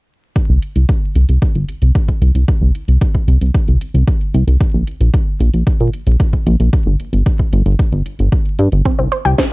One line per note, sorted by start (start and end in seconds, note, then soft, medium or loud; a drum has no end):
0.36 kick loud
0.36 closed hi-hat medium
0.49 0.59 C2 medium
0.62 closed hi-hat medium
0.76 0.85 C2 medium
0.76 closed hi-hat soft
0.89 kick loud
0.89 closed hi-hat medium
1.15 1.25 C2 medium
1.15 closed hi-hat medium
1.29 1.38 C2 medium
1.29 closed hi-hat soft
1.42 kick loud
1.42 closed hi-hat medium
1.55 1.65 G1 medium
1.55 closed hi-hat soft
1.69 closed hi-hat medium
1.82 1.91 C2 medium
1.82 closed hi-hat soft
1.95 kick loud
1.95 closed hi-hat medium
2.08 kick medium
2.08 closed hi-hat soft
2.22 2.31 C2 medium
2.22 closed hi-hat medium
2.35 2.44 C2 medium
2.35 closed hi-hat medium
2.48 kick loud
2.48 closed hi-hat medium
2.61 2.71 C2 medium
2.75 closed hi-hat medium
2.88 2.98 C2 medium
2.88 closed hi-hat soft
3.01 kick loud
3.01 closed hi-hat medium
3.15 kick medium
3.28 3.37 C2 medium
3.28 closed hi-hat medium
3.41 3.51 C2 medium
3.41 closed hi-hat soft
3.54 kick loud
3.54 closed hi-hat medium
3.68 3.77 C2 medium
3.68 closed hi-hat soft
3.81 closed hi-hat medium
3.94 4.04 C2 medium
3.94 closed hi-hat soft
4.08 kick loud
4.08 closed hi-hat medium
4.21 closed hi-hat soft
4.34 4.44 C2 medium
4.34 closed hi-hat medium
4.47 4.57 C2 medium
4.47 closed hi-hat medium
4.61 kick loud
4.61 closed hi-hat medium
4.74 4.84 A#1 medium
4.87 closed hi-hat medium
5.00 5.10 A#1 medium
5.00 closed hi-hat soft
5.14 kick loud
5.14 closed hi-hat medium
5.40 5.50 A#1 medium
5.40 closed hi-hat medium
5.54 5.63 A#1 medium
5.54 closed hi-hat soft
5.67 kick loud
5.67 closed hi-hat medium
5.80 5.90 A#2 medium
5.80 closed hi-hat soft
5.93 closed hi-hat medium
6.07 6.16 A#1 medium
6.07 closed hi-hat soft
6.20 kick loud
6.20 closed hi-hat medium
6.33 kick medium
6.33 closed hi-hat soft
6.47 6.56 A#1 medium
6.47 closed hi-hat medium
6.60 6.69 A#1 medium
6.60 closed hi-hat medium
6.73 kick loud
6.73 closed hi-hat medium
6.86 6.96 G1 medium
7.00 closed hi-hat medium
7.13 7.22 G1 medium
7.13 closed hi-hat soft
7.26 kick loud
7.26 closed hi-hat medium
7.39 kick medium
7.53 7.62 G1 medium
7.53 closed hi-hat medium
7.66 7.76 G1 medium
7.66 closed hi-hat soft
7.79 kick loud
7.79 closed hi-hat medium
7.92 8.02 G1 medium
7.92 closed hi-hat soft
8.06 closed hi-hat medium
8.19 8.29 G1 medium
8.19 closed hi-hat soft
8.32 kick loud
8.32 closed hi-hat medium
8.46 closed hi-hat soft
8.59 8.68 G2 medium
8.59 closed hi-hat medium
8.72 8.82 G1 medium
8.72 closed hi-hat soft
8.85 8.93 C4 medium
8.85 kick loud
8.85 closed hi-hat medium
8.99 9.08 C2 medium
8.99 9.03 C4 medium
9.12 9.24 C5 medium
9.12 closed hi-hat medium
9.25 9.35 C2 medium
9.25 9.33 G4 loud
9.25 closed hi-hat soft
9.38 9.46 C4 medium
9.38 kick loud
9.38 snare loud
9.38 closed hi-hat medium